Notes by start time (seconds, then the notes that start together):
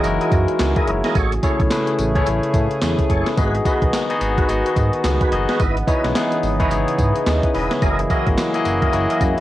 Already playing: E3 G#3 A#3 D#4 E4 F#4 G#4 A#4 C#5
0.04 F#1 G#3 D#4 E4 F#4 A#4, closed hi-hat, tambourine
0.21 E4 G#4 A#4 D#5, closed hi-hat
0.32 F#2, kick, closed hi-hat, tambourine
0.48 closed hi-hat
0.59 C#2 G#5, snare, clap, closed hi-hat, tambourine
0.76 E4 G#4 A#4 D#5 E5, kick, closed hi-hat
0.87 F#1 E4 C#5, closed hi-hat
1.04 E4 F#4 G#4 A#4 D#5, snare, closed hi-hat
1.15 A1 C#3 A3 E4 G#4 A4 C#5, kick, closed hi-hat, tambourine
1.32 closed hi-hat
1.43 A3 C#4 E4 G#4 A4 C#5, kick, closed hi-hat, tambourine
1.60 B1, kick, closed hi-hat
1.70 A3 C#4 E4 G#4 B4, snare, clap, closed hi-hat, tambourine
1.87 closed hi-hat
1.99 A1, closed hi-hat, tambourine
2.15 A3 C#4 E4 G#4 A4 C#5, kick, closed hi-hat
2.26 A1, closed hi-hat, tambourine
2.43 closed hi-hat
2.54 A2, kick, closed hi-hat, tambourine
2.71 closed hi-hat
2.82 E2, snare, clap, closed hi-hat, tambourine
2.99 kick, closed hi-hat
3.10 F#1 G#4 A4 C#5, kick, closed hi-hat
3.26 snare, closed hi-hat
3.37 G#1 D#3 B3 D#4 F#4 G#4 B4 D#5, kick, closed hi-hat, tambourine
3.55 closed hi-hat
3.65 B3 D#4 F#4 G#4 B4 D#5, kick, closed hi-hat, tambourine
3.82 B1, kick, closed hi-hat
3.93 snare, clap, closed hi-hat, tambourine
4.10 B3 D#4 F#4 G#4 D#5, closed hi-hat
4.21 G#1 B3 D#4 F#4 G#4 D#5, closed hi-hat, tambourine
4.38 F#4 G#4 B4, kick, closed hi-hat
4.49 G#1 B3 D#4 F#4 G#4 D#5, closed hi-hat, tambourine
4.65 F#4 G#4 B4, closed hi-hat
4.76 G#2, kick, closed hi-hat, tambourine
4.93 closed hi-hat
5.04 C#2, snare, clap, closed hi-hat, tambourine
5.21 F#4 G#4 B4, kick, closed hi-hat
5.32 F#1 B3 D#4 F#4 G#4 D#5, closed hi-hat
5.48 F#4 G#4 B4, snare, closed hi-hat
5.59 G#1 C#3 E3 E4 B4 D#5, kick, closed hi-hat, tambourine
5.77 closed hi-hat
5.87 B3 D#4 E4 G#4 B4 C#5 D#5, kick, closed hi-hat, tambourine
6.05 B1, snare, closed hi-hat
6.15 B3 D#4 E4 G#4 B4, snare, clap, closed hi-hat, tambourine
6.32 closed hi-hat
6.43 G#1, open hi-hat, tambourine
6.60 B3 D#4 E4 G#4 B4 C#5 D#5, kick, closed hi-hat
6.71 G#1, closed hi-hat, tambourine
6.88 closed hi-hat
6.98 G#2, kick, closed hi-hat, tambourine
7.16 closed hi-hat
7.26 D#2, snare, clap, closed hi-hat, tambourine
7.43 B4 G#5, kick, closed hi-hat
7.54 E1 E4 G#4 B4 D#5 E5, open hi-hat
7.71 E4 C#5, snare, closed hi-hat
7.81 F#1 E3 F#3 A#3 E4 F#4 G#4 A#4 D#5, kick, closed hi-hat, tambourine
7.99 closed hi-hat
8.09 A#3 E4 F#4 G#4 A#4 D#5, kick, closed hi-hat, tambourine
8.26 G#1, kick, closed hi-hat
8.37 snare, clap, closed hi-hat, tambourine
8.54 A#3 E4 F#4 G#4 D#5, closed hi-hat
8.65 F#1 A#3 E4 F#4 G#4 D#5, closed hi-hat, tambourine
8.82 E4 G#4 A#4 D#5, kick, closed hi-hat
8.93 F#1 A#3 E4 F#4 G#4 C#5, closed hi-hat, tambourine
9.01 D#5
9.09 E4 G#4 A#4 D#5, closed hi-hat
9.21 F#2, kick, closed hi-hat, tambourine